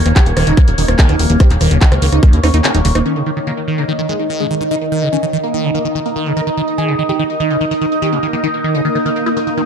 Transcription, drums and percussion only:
0.06 cross-stick soft
0.06 closed hi-hat medium
0.16 kick loud
0.16 clap loud
0.16 closed hi-hat medium
0.26 closed hi-hat medium
0.37 cross-stick medium
0.37 open hi-hat loud
0.47 closed hi-hat medium
0.57 kick loud
0.57 cross-stick soft
0.57 closed hi-hat medium
0.68 closed hi-hat medium
0.78 open hi-hat loud
0.88 cross-stick medium
0.88 closed hi-hat medium
0.99 kick loud
0.99 clap loud
0.99 closed hi-hat medium
1.09 cross-stick soft
1.09 closed hi-hat medium
1.19 open hi-hat loud
1.30 closed hi-hat medium
1.40 kick loud
1.40 cross-stick medium
1.40 closed hi-hat medium
1.50 clap soft
1.50 closed hi-hat medium
1.61 cross-stick soft
1.61 open hi-hat loud
1.71 closed hi-hat medium
1.81 kick loud
1.81 clap loud
1.81 closed hi-hat medium
1.92 cross-stick medium
1.92 closed hi-hat medium
2.02 open hi-hat loud
2.12 cross-stick soft
2.12 closed hi-hat medium
2.23 kick loud
2.23 closed hi-hat medium
2.33 closed hi-hat medium
2.44 cross-stick medium
2.44 open hi-hat loud
2.54 closed hi-hat medium
2.64 cross-stick soft
2.64 clap loud
2.64 closed hi-hat medium
2.75 closed hi-hat medium
2.85 open hi-hat loud
2.95 cross-stick medium
2.95 closed hi-hat medium

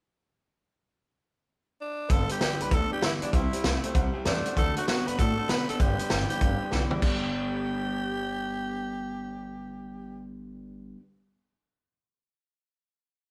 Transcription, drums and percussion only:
2.10 kick loud
2.10 closed hi-hat medium
2.29 closed hi-hat medium
2.41 snare loud
2.41 closed hi-hat medium
2.60 closed hi-hat medium
2.71 kick loud
2.71 closed hi-hat medium
3.02 snare loud
3.02 closed hi-hat medium
3.22 closed hi-hat medium
3.33 kick loud
3.33 closed hi-hat medium
3.53 closed hi-hat medium
3.64 snare loud
3.64 closed hi-hat medium
3.84 closed hi-hat medium
3.95 kick loud
3.95 closed hi-hat medium
4.25 snare loud
4.25 closed hi-hat medium
4.46 closed hi-hat medium
4.57 kick loud
4.57 closed hi-hat medium
4.77 closed hi-hat medium
4.88 snare loud
4.88 closed hi-hat medium
5.08 closed hi-hat medium
5.19 kick loud
5.19 closed hi-hat medium
5.49 snare loud
5.49 closed hi-hat medium
5.69 closed hi-hat medium
5.80 kick loud
5.80 closed hi-hat medium
5.99 closed hi-hat medium
6.10 snare loud
6.10 closed hi-hat medium
6.30 closed hi-hat medium
6.41 kick loud
6.41 closed hi-hat medium
6.72 snare medium
6.91 floor tom medium
7.02 kick loud
7.02 crash loud

